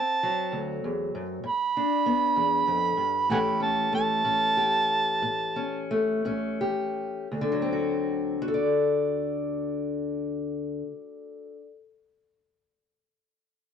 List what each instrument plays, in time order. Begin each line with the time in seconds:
Already playing: steel-string acoustic guitar D2 C4, harmonica A5
0.23 steel-string acoustic guitar F#3
0.52 steel-string acoustic guitar D2
0.84 steel-string acoustic guitar E2
1.15 steel-string acoustic guitar F#2
1.44 steel-string acoustic guitar G2
1.48 harmonica B5
1.77 steel-string acoustic guitar D4
2.06 steel-string acoustic guitar B3
2.36 steel-string acoustic guitar E2
2.67 steel-string acoustic guitar F2
2.97 steel-string acoustic guitar G2
3.29 steel-string acoustic guitar A2 E3 A3 C#4 G4, harmonica F#5 G#5 B5
3.60 steel-string acoustic guitar C#4, harmonica A5
3.93 steel-string acoustic guitar A3, harmonica A5
4.24 steel-string acoustic guitar A2 C#4
4.57 steel-string acoustic guitar G4
5.22 steel-string acoustic guitar A2
5.56 steel-string acoustic guitar C#4
5.91 steel-string acoustic guitar A3
6.25 steel-string acoustic guitar A2 C#4
6.61 steel-string acoustic guitar G4
7.32 steel-string acoustic guitar D2
7.41 steel-string acoustic guitar D3
7.52 steel-string acoustic guitar F#3
7.62 steel-string acoustic guitar C4
7.73 steel-string acoustic guitar F#4
8.42 steel-string acoustic guitar F#4
8.48 steel-string acoustic guitar A4
8.54 steel-string acoustic guitar D5